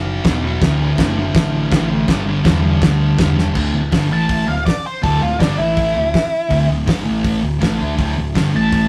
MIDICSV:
0, 0, Header, 1, 5, 480
1, 0, Start_track
1, 0, Key_signature, 2, "major"
1, 0, Tempo, 368777
1, 804, Time_signature, 4, 2, 24, 8
1, 11562, End_track
2, 0, Start_track
2, 0, Title_t, "Lead electric guitar"
2, 0, Program_c, 0, 29
2, 5375, Note_on_c, 0, 81, 88
2, 5831, Note_off_c, 0, 81, 0
2, 5833, Note_on_c, 0, 77, 92
2, 6054, Note_off_c, 0, 77, 0
2, 6060, Note_on_c, 0, 74, 84
2, 6301, Note_off_c, 0, 74, 0
2, 6333, Note_on_c, 0, 72, 77
2, 6545, Note_off_c, 0, 72, 0
2, 6550, Note_on_c, 0, 69, 94
2, 6786, Note_off_c, 0, 69, 0
2, 6788, Note_on_c, 0, 65, 77
2, 7020, Note_on_c, 0, 62, 101
2, 7026, Note_off_c, 0, 65, 0
2, 7260, Note_on_c, 0, 64, 97
2, 7262, Note_off_c, 0, 62, 0
2, 8670, Note_off_c, 0, 64, 0
2, 11142, Note_on_c, 0, 81, 107
2, 11562, Note_off_c, 0, 81, 0
2, 11562, End_track
3, 0, Start_track
3, 0, Title_t, "Distorted electric guitar"
3, 0, Program_c, 1, 30
3, 0, Note_on_c, 1, 54, 58
3, 0, Note_on_c, 1, 59, 78
3, 311, Note_off_c, 1, 54, 0
3, 311, Note_on_c, 1, 47, 77
3, 326, Note_on_c, 1, 54, 82
3, 330, Note_off_c, 1, 59, 0
3, 345, Note_on_c, 1, 59, 95
3, 554, Note_off_c, 1, 59, 0
3, 569, Note_on_c, 1, 59, 81
3, 591, Note_off_c, 1, 54, 0
3, 607, Note_on_c, 1, 54, 67
3, 782, Note_off_c, 1, 47, 0
3, 792, Note_off_c, 1, 59, 0
3, 796, Note_on_c, 1, 38, 97
3, 811, Note_off_c, 1, 54, 0
3, 817, Note_on_c, 1, 45, 105
3, 833, Note_on_c, 1, 50, 106
3, 1018, Note_off_c, 1, 50, 0
3, 1033, Note_on_c, 1, 50, 84
3, 1061, Note_off_c, 1, 45, 0
3, 1077, Note_on_c, 1, 45, 67
3, 1255, Note_off_c, 1, 38, 0
3, 1264, Note_off_c, 1, 45, 0
3, 1271, Note_on_c, 1, 38, 94
3, 1280, Note_on_c, 1, 45, 105
3, 1286, Note_off_c, 1, 50, 0
3, 1301, Note_on_c, 1, 50, 108
3, 1518, Note_off_c, 1, 50, 0
3, 1534, Note_on_c, 1, 50, 81
3, 1553, Note_off_c, 1, 45, 0
3, 1569, Note_on_c, 1, 45, 63
3, 1755, Note_off_c, 1, 38, 0
3, 2224, Note_on_c, 1, 38, 80
3, 2229, Note_off_c, 1, 45, 0
3, 2239, Note_off_c, 1, 50, 0
3, 2244, Note_on_c, 1, 45, 85
3, 2255, Note_on_c, 1, 50, 92
3, 2451, Note_off_c, 1, 50, 0
3, 2466, Note_on_c, 1, 50, 77
3, 2478, Note_off_c, 1, 45, 0
3, 2494, Note_on_c, 1, 45, 62
3, 2690, Note_off_c, 1, 38, 0
3, 2695, Note_on_c, 1, 43, 106
3, 2697, Note_off_c, 1, 50, 0
3, 2711, Note_off_c, 1, 45, 0
3, 2724, Note_on_c, 1, 50, 110
3, 2743, Note_on_c, 1, 55, 115
3, 2922, Note_off_c, 1, 55, 0
3, 2938, Note_on_c, 1, 55, 73
3, 2964, Note_off_c, 1, 50, 0
3, 2979, Note_on_c, 1, 50, 65
3, 3160, Note_off_c, 1, 43, 0
3, 3171, Note_off_c, 1, 50, 0
3, 3175, Note_on_c, 1, 43, 86
3, 3187, Note_on_c, 1, 50, 88
3, 3190, Note_off_c, 1, 55, 0
3, 3206, Note_on_c, 1, 55, 100
3, 3387, Note_off_c, 1, 55, 0
3, 3403, Note_on_c, 1, 55, 67
3, 3428, Note_off_c, 1, 50, 0
3, 3443, Note_on_c, 1, 50, 62
3, 3664, Note_off_c, 1, 43, 0
3, 4140, Note_on_c, 1, 43, 82
3, 4145, Note_off_c, 1, 50, 0
3, 4160, Note_off_c, 1, 55, 0
3, 4161, Note_on_c, 1, 50, 90
3, 4176, Note_on_c, 1, 55, 90
3, 4365, Note_off_c, 1, 55, 0
3, 4381, Note_on_c, 1, 55, 74
3, 4390, Note_off_c, 1, 50, 0
3, 4406, Note_on_c, 1, 50, 60
3, 4601, Note_off_c, 1, 43, 0
3, 4606, Note_on_c, 1, 38, 92
3, 4612, Note_off_c, 1, 55, 0
3, 4613, Note_off_c, 1, 50, 0
3, 4620, Note_on_c, 1, 45, 93
3, 4628, Note_on_c, 1, 50, 107
3, 4846, Note_off_c, 1, 38, 0
3, 4850, Note_off_c, 1, 45, 0
3, 4862, Note_on_c, 1, 38, 61
3, 4864, Note_off_c, 1, 50, 0
3, 4866, Note_on_c, 1, 45, 77
3, 5060, Note_off_c, 1, 38, 0
3, 5062, Note_off_c, 1, 45, 0
3, 5102, Note_on_c, 1, 50, 93
3, 5106, Note_on_c, 1, 55, 91
3, 5109, Note_on_c, 1, 43, 94
3, 5327, Note_off_c, 1, 43, 0
3, 5332, Note_on_c, 1, 45, 80
3, 5339, Note_off_c, 1, 50, 0
3, 5342, Note_off_c, 1, 55, 0
3, 5344, Note_on_c, 1, 52, 90
3, 5347, Note_on_c, 1, 57, 98
3, 5801, Note_off_c, 1, 45, 0
3, 5810, Note_on_c, 1, 38, 63
3, 5811, Note_off_c, 1, 52, 0
3, 5817, Note_on_c, 1, 45, 74
3, 5824, Note_off_c, 1, 57, 0
3, 6014, Note_off_c, 1, 38, 0
3, 6018, Note_off_c, 1, 45, 0
3, 6544, Note_on_c, 1, 38, 90
3, 6546, Note_on_c, 1, 45, 95
3, 6563, Note_on_c, 1, 50, 106
3, 6784, Note_off_c, 1, 38, 0
3, 6784, Note_off_c, 1, 45, 0
3, 6793, Note_off_c, 1, 50, 0
3, 6800, Note_on_c, 1, 38, 59
3, 6813, Note_on_c, 1, 45, 73
3, 6991, Note_off_c, 1, 38, 0
3, 6997, Note_off_c, 1, 45, 0
3, 7027, Note_on_c, 1, 43, 93
3, 7039, Note_on_c, 1, 50, 89
3, 7049, Note_on_c, 1, 55, 107
3, 7266, Note_off_c, 1, 43, 0
3, 7272, Note_off_c, 1, 50, 0
3, 7277, Note_off_c, 1, 55, 0
3, 7281, Note_on_c, 1, 45, 90
3, 7290, Note_on_c, 1, 52, 100
3, 7292, Note_on_c, 1, 57, 88
3, 7729, Note_off_c, 1, 45, 0
3, 7735, Note_on_c, 1, 38, 64
3, 7739, Note_off_c, 1, 52, 0
3, 7745, Note_on_c, 1, 45, 76
3, 7759, Note_off_c, 1, 57, 0
3, 7940, Note_off_c, 1, 38, 0
3, 7945, Note_off_c, 1, 45, 0
3, 8448, Note_on_c, 1, 38, 93
3, 8458, Note_on_c, 1, 45, 95
3, 8466, Note_on_c, 1, 50, 118
3, 8668, Note_off_c, 1, 38, 0
3, 8684, Note_on_c, 1, 38, 64
3, 8685, Note_off_c, 1, 45, 0
3, 8701, Note_on_c, 1, 45, 71
3, 8707, Note_off_c, 1, 50, 0
3, 8896, Note_off_c, 1, 38, 0
3, 8904, Note_off_c, 1, 45, 0
3, 8927, Note_on_c, 1, 43, 86
3, 8937, Note_on_c, 1, 50, 94
3, 8944, Note_on_c, 1, 55, 104
3, 9134, Note_off_c, 1, 43, 0
3, 9139, Note_on_c, 1, 45, 83
3, 9147, Note_off_c, 1, 50, 0
3, 9150, Note_off_c, 1, 55, 0
3, 9152, Note_on_c, 1, 52, 87
3, 9155, Note_on_c, 1, 57, 104
3, 9629, Note_off_c, 1, 45, 0
3, 9639, Note_off_c, 1, 52, 0
3, 9642, Note_on_c, 1, 38, 71
3, 9644, Note_on_c, 1, 45, 72
3, 9653, Note_off_c, 1, 57, 0
3, 9856, Note_off_c, 1, 38, 0
3, 9857, Note_off_c, 1, 45, 0
3, 9878, Note_on_c, 1, 45, 90
3, 9882, Note_on_c, 1, 52, 103
3, 9898, Note_on_c, 1, 57, 104
3, 10112, Note_off_c, 1, 52, 0
3, 10112, Note_off_c, 1, 57, 0
3, 10117, Note_on_c, 1, 50, 83
3, 10128, Note_on_c, 1, 57, 91
3, 10135, Note_off_c, 1, 45, 0
3, 10143, Note_on_c, 1, 62, 97
3, 10354, Note_on_c, 1, 38, 95
3, 10356, Note_off_c, 1, 50, 0
3, 10361, Note_on_c, 1, 45, 104
3, 10369, Note_off_c, 1, 57, 0
3, 10374, Note_on_c, 1, 50, 117
3, 10388, Note_off_c, 1, 62, 0
3, 10596, Note_off_c, 1, 45, 0
3, 10598, Note_off_c, 1, 38, 0
3, 10612, Note_on_c, 1, 45, 72
3, 10614, Note_on_c, 1, 38, 60
3, 10624, Note_off_c, 1, 50, 0
3, 10822, Note_off_c, 1, 45, 0
3, 10823, Note_off_c, 1, 38, 0
3, 10858, Note_on_c, 1, 43, 87
3, 10873, Note_on_c, 1, 50, 84
3, 10882, Note_on_c, 1, 55, 100
3, 11096, Note_off_c, 1, 43, 0
3, 11102, Note_on_c, 1, 45, 91
3, 11108, Note_off_c, 1, 50, 0
3, 11108, Note_off_c, 1, 55, 0
3, 11113, Note_on_c, 1, 52, 92
3, 11113, Note_on_c, 1, 57, 100
3, 11562, Note_off_c, 1, 45, 0
3, 11562, Note_off_c, 1, 52, 0
3, 11562, Note_off_c, 1, 57, 0
3, 11562, End_track
4, 0, Start_track
4, 0, Title_t, "Picked electric bass"
4, 0, Program_c, 2, 34
4, 0, Note_on_c, 2, 30, 97
4, 224, Note_off_c, 2, 30, 0
4, 322, Note_on_c, 2, 28, 105
4, 702, Note_off_c, 2, 28, 0
4, 796, Note_on_c, 2, 26, 104
4, 1177, Note_off_c, 2, 26, 0
4, 1269, Note_on_c, 2, 30, 97
4, 1652, Note_off_c, 2, 30, 0
4, 1751, Note_on_c, 2, 33, 98
4, 2133, Note_off_c, 2, 33, 0
4, 2234, Note_on_c, 2, 33, 104
4, 2614, Note_off_c, 2, 33, 0
4, 2712, Note_on_c, 2, 31, 102
4, 3092, Note_off_c, 2, 31, 0
4, 3185, Note_on_c, 2, 40, 102
4, 3568, Note_off_c, 2, 40, 0
4, 3660, Note_on_c, 2, 38, 100
4, 4045, Note_off_c, 2, 38, 0
4, 4138, Note_on_c, 2, 28, 92
4, 4523, Note_off_c, 2, 28, 0
4, 4628, Note_on_c, 2, 26, 92
4, 4847, Note_off_c, 2, 26, 0
4, 4855, Note_on_c, 2, 26, 78
4, 5087, Note_off_c, 2, 26, 0
4, 5113, Note_on_c, 2, 31, 91
4, 5336, Note_off_c, 2, 31, 0
4, 5351, Note_on_c, 2, 33, 88
4, 5799, Note_off_c, 2, 33, 0
4, 5822, Note_on_c, 2, 26, 76
4, 6052, Note_off_c, 2, 26, 0
4, 6550, Note_on_c, 2, 26, 95
4, 6777, Note_off_c, 2, 26, 0
4, 6787, Note_on_c, 2, 26, 76
4, 7015, Note_off_c, 2, 26, 0
4, 7032, Note_on_c, 2, 31, 93
4, 7259, Note_off_c, 2, 31, 0
4, 7267, Note_on_c, 2, 33, 95
4, 7720, Note_off_c, 2, 33, 0
4, 7758, Note_on_c, 2, 26, 80
4, 7983, Note_off_c, 2, 26, 0
4, 8467, Note_on_c, 2, 26, 94
4, 8695, Note_off_c, 2, 26, 0
4, 8702, Note_on_c, 2, 26, 81
4, 8935, Note_off_c, 2, 26, 0
4, 8945, Note_on_c, 2, 31, 94
4, 9177, Note_off_c, 2, 31, 0
4, 9196, Note_on_c, 2, 33, 93
4, 9647, Note_off_c, 2, 33, 0
4, 9669, Note_on_c, 2, 26, 75
4, 9900, Note_off_c, 2, 26, 0
4, 9920, Note_on_c, 2, 33, 105
4, 10146, Note_off_c, 2, 33, 0
4, 10160, Note_on_c, 2, 38, 89
4, 10386, Note_off_c, 2, 38, 0
4, 10394, Note_on_c, 2, 26, 94
4, 10623, Note_off_c, 2, 26, 0
4, 10646, Note_on_c, 2, 26, 78
4, 10867, Note_off_c, 2, 26, 0
4, 10875, Note_on_c, 2, 31, 92
4, 11094, Note_off_c, 2, 31, 0
4, 11102, Note_on_c, 2, 33, 97
4, 11562, Note_off_c, 2, 33, 0
4, 11562, End_track
5, 0, Start_track
5, 0, Title_t, "Drums"
5, 316, Note_on_c, 9, 49, 61
5, 324, Note_on_c, 9, 36, 112
5, 330, Note_on_c, 9, 38, 108
5, 446, Note_off_c, 9, 49, 0
5, 454, Note_off_c, 9, 36, 0
5, 461, Note_off_c, 9, 38, 0
5, 798, Note_on_c, 9, 49, 64
5, 802, Note_on_c, 9, 36, 116
5, 812, Note_on_c, 9, 38, 113
5, 928, Note_off_c, 9, 49, 0
5, 932, Note_off_c, 9, 36, 0
5, 942, Note_off_c, 9, 38, 0
5, 1275, Note_on_c, 9, 49, 72
5, 1278, Note_on_c, 9, 36, 120
5, 1289, Note_on_c, 9, 38, 120
5, 1405, Note_off_c, 9, 49, 0
5, 1409, Note_off_c, 9, 36, 0
5, 1420, Note_off_c, 9, 38, 0
5, 1753, Note_on_c, 9, 36, 123
5, 1756, Note_on_c, 9, 49, 73
5, 1771, Note_on_c, 9, 38, 125
5, 1883, Note_off_c, 9, 36, 0
5, 1886, Note_off_c, 9, 49, 0
5, 1901, Note_off_c, 9, 38, 0
5, 2229, Note_on_c, 9, 49, 65
5, 2233, Note_on_c, 9, 36, 113
5, 2244, Note_on_c, 9, 38, 112
5, 2359, Note_off_c, 9, 49, 0
5, 2364, Note_off_c, 9, 36, 0
5, 2374, Note_off_c, 9, 38, 0
5, 2707, Note_on_c, 9, 49, 61
5, 2710, Note_on_c, 9, 36, 118
5, 2721, Note_on_c, 9, 38, 109
5, 2837, Note_off_c, 9, 49, 0
5, 2840, Note_off_c, 9, 36, 0
5, 2852, Note_off_c, 9, 38, 0
5, 3189, Note_on_c, 9, 36, 121
5, 3191, Note_on_c, 9, 49, 69
5, 3205, Note_on_c, 9, 38, 121
5, 3320, Note_off_c, 9, 36, 0
5, 3321, Note_off_c, 9, 49, 0
5, 3336, Note_off_c, 9, 38, 0
5, 3668, Note_on_c, 9, 36, 119
5, 3669, Note_on_c, 9, 49, 68
5, 3683, Note_on_c, 9, 38, 120
5, 3798, Note_off_c, 9, 36, 0
5, 3799, Note_off_c, 9, 49, 0
5, 3814, Note_off_c, 9, 38, 0
5, 4141, Note_on_c, 9, 49, 63
5, 4147, Note_on_c, 9, 36, 112
5, 4155, Note_on_c, 9, 38, 108
5, 4271, Note_off_c, 9, 49, 0
5, 4277, Note_off_c, 9, 36, 0
5, 4286, Note_off_c, 9, 38, 0
5, 4407, Note_on_c, 9, 38, 68
5, 4538, Note_off_c, 9, 38, 0
5, 4621, Note_on_c, 9, 57, 108
5, 4625, Note_on_c, 9, 36, 107
5, 4751, Note_off_c, 9, 57, 0
5, 4756, Note_off_c, 9, 36, 0
5, 5101, Note_on_c, 9, 46, 64
5, 5109, Note_on_c, 9, 36, 117
5, 5116, Note_on_c, 9, 38, 118
5, 5231, Note_off_c, 9, 46, 0
5, 5239, Note_off_c, 9, 36, 0
5, 5246, Note_off_c, 9, 38, 0
5, 5580, Note_on_c, 9, 46, 66
5, 5588, Note_on_c, 9, 36, 112
5, 5711, Note_off_c, 9, 46, 0
5, 5718, Note_off_c, 9, 36, 0
5, 6072, Note_on_c, 9, 36, 100
5, 6072, Note_on_c, 9, 46, 54
5, 6086, Note_on_c, 9, 38, 98
5, 6202, Note_off_c, 9, 36, 0
5, 6202, Note_off_c, 9, 46, 0
5, 6217, Note_off_c, 9, 38, 0
5, 6554, Note_on_c, 9, 36, 104
5, 6557, Note_on_c, 9, 46, 57
5, 6684, Note_off_c, 9, 36, 0
5, 6687, Note_off_c, 9, 46, 0
5, 7033, Note_on_c, 9, 36, 108
5, 7033, Note_on_c, 9, 46, 61
5, 7047, Note_on_c, 9, 38, 117
5, 7163, Note_off_c, 9, 36, 0
5, 7163, Note_off_c, 9, 46, 0
5, 7178, Note_off_c, 9, 38, 0
5, 7505, Note_on_c, 9, 46, 57
5, 7511, Note_on_c, 9, 36, 112
5, 7635, Note_off_c, 9, 46, 0
5, 7641, Note_off_c, 9, 36, 0
5, 7993, Note_on_c, 9, 36, 106
5, 7993, Note_on_c, 9, 46, 51
5, 8007, Note_on_c, 9, 38, 108
5, 8123, Note_off_c, 9, 36, 0
5, 8123, Note_off_c, 9, 46, 0
5, 8137, Note_off_c, 9, 38, 0
5, 8466, Note_on_c, 9, 46, 57
5, 8470, Note_on_c, 9, 36, 100
5, 8596, Note_off_c, 9, 46, 0
5, 8600, Note_off_c, 9, 36, 0
5, 8950, Note_on_c, 9, 36, 123
5, 8953, Note_on_c, 9, 46, 62
5, 8967, Note_on_c, 9, 38, 116
5, 9080, Note_off_c, 9, 36, 0
5, 9083, Note_off_c, 9, 46, 0
5, 9098, Note_off_c, 9, 38, 0
5, 9430, Note_on_c, 9, 36, 121
5, 9431, Note_on_c, 9, 46, 64
5, 9560, Note_off_c, 9, 36, 0
5, 9561, Note_off_c, 9, 46, 0
5, 9914, Note_on_c, 9, 36, 108
5, 9916, Note_on_c, 9, 46, 56
5, 9930, Note_on_c, 9, 38, 100
5, 10044, Note_off_c, 9, 36, 0
5, 10046, Note_off_c, 9, 46, 0
5, 10060, Note_off_c, 9, 38, 0
5, 10394, Note_on_c, 9, 36, 108
5, 10395, Note_on_c, 9, 46, 54
5, 10524, Note_off_c, 9, 36, 0
5, 10525, Note_off_c, 9, 46, 0
5, 10873, Note_on_c, 9, 46, 59
5, 10874, Note_on_c, 9, 36, 108
5, 10887, Note_on_c, 9, 38, 114
5, 11003, Note_off_c, 9, 46, 0
5, 11004, Note_off_c, 9, 36, 0
5, 11018, Note_off_c, 9, 38, 0
5, 11352, Note_on_c, 9, 46, 56
5, 11357, Note_on_c, 9, 36, 121
5, 11482, Note_off_c, 9, 46, 0
5, 11487, Note_off_c, 9, 36, 0
5, 11562, End_track
0, 0, End_of_file